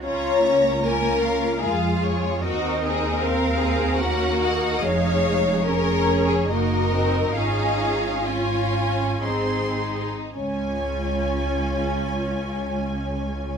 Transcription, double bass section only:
0.04 C#2
1.64 F2
2.45 D#2
4.85 F1
6.49 F#1
7.34 G#1
9.24 G#1
10.36 C#2

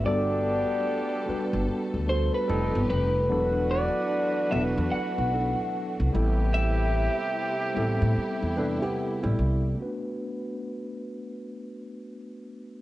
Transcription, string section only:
Already playing: A3 B3
0.04 G3 A4
2.47 F3 D#4 G4
3.28 E3 D4 F#4
6.12 C3 G4 B4
7.74 E4

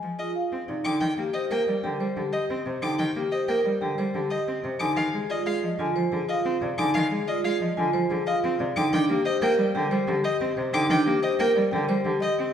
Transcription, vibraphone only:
0.19 F4
0.68 D#4
0.85 D#4
1.34 G4
1.51 A#4
1.84 G4
2.00 C5
2.33 G4
2.82 D#4
3.32 G4
3.49 A#4
3.82 G4
3.98 C5
4.31 G4
4.80 D#4
5.30 F4
5.46 G#4
5.79 F4
5.96 C5
6.29 F4
6.78 D#4
7.28 F4
7.44 G#4
7.77 F4
7.93 C5
8.27 F4
8.76 D#4
8.93 D4
9.26 G4
9.42 A#4
9.75 G4
9.91 C5
10.24 G4
10.73 D#4
10.90 D4
11.23 G4
11.39 A#4
11.73 G4
11.89 C5
12.22 G4

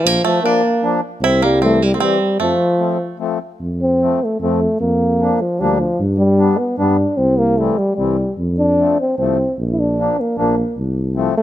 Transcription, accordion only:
0.43 F3 A#3 D4
0.82 F3 A#3 D4
1.61 E3 G3 C4
2.00 E3 G3 C4
2.78 F3 A3 C4
3.19 F3 A3 C4
4.01 F3 A3 C4
4.42 F3 A3 C4
5.21 F3 A#3 D4
5.60 F3 A#3 D4
6.38 G3 B3 D4
6.78 G3 B3 D4
7.58 E3 G3 C4
7.98 E3 G3 C4
8.79 F3 A3 C4
9.19 F3 A3 C4
9.98 F3 A#3 D4
10.37 F3 A#3 D4
11.16 F3 A3 C4

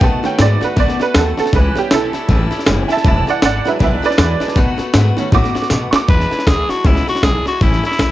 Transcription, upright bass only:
0.01 B2
0.24 muted upright bass stroke
0.39 G#2
0.62 muted upright bass stroke
0.77 F#2
1.00 muted upright bass stroke
1.15 D#2
1.38 muted upright bass stroke
1.53 C#2
1.76 muted upright bass stroke
1.91 B1
2.14 muted upright bass stroke
2.29 A1
2.51 muted upright bass stroke
2.67 F#1
2.89 muted upright bass stroke
3.05 E1
3.27 muted upright bass stroke
3.43 G#1
3.65 muted upright bass stroke
3.80 B1
4.02 muted upright bass stroke
4.18 E2
4.41 muted upright bass stroke
4.56 B2
4.79 muted upright bass stroke
4.94 G#2
5.17 muted upright bass stroke
5.32 A2
5.55 muted upright bass stroke
5.71 B2
5.92 muted upright bass stroke
6.09 E2
6.31 muted upright bass stroke
6.47 D2
6.69 muted upright bass stroke
6.84 C#2
7.07 muted upright bass stroke
7.23 B1
7.46 muted upright bass stroke
7.61 A1
7.84 muted upright bass stroke
7.99 B1

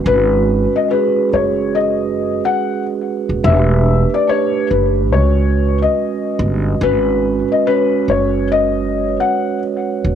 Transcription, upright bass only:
0.06 G#1
1.33 F#1
3.29 D#1
3.44 E1
4.71 F#1
5.13 C#2
6.39 G1
6.81 G#1
8.08 F#1
10.05 D#1

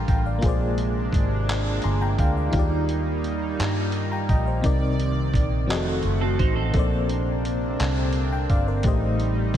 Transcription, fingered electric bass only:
0.09 A1
0.43 A#1
1.14 G#1
1.85 G1
2.19 D2
2.54 D#2
3.60 G2
4.30 A#1
4.65 C2
5.34 A#1
5.70 F1
6.05 F#1
6.40 A1
6.75 A#1
7.80 C2
8.50 G1
8.85 A1

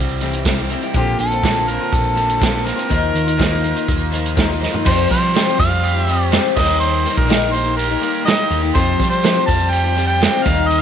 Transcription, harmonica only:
0.97 G4
1.20 A4
1.69 A#4
1.94 A4
2.66 A#4
4.86 C5
5.10 C5
5.59 F5
6.56 D#5
6.79 C5
7.17 A#4
7.52 C5
7.77 A#4
8.25 D#5
8.74 C5
9.10 C5
9.46 A5
9.70 G5
10.07 G5
10.43 F5
10.67 D#5

